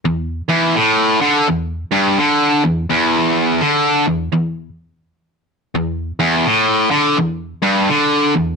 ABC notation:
X:1
M:4/4
L:1/8
Q:"Swing" 1/4=84
K:Em
V:1 name="Overdriven electric guitar" clef=bass
E,, E,, A,, D, E,, G,, D, E,, | E,,2 D, E,, E,, z3 | E,, E,, A,, D, E,, G,, D, E,, |]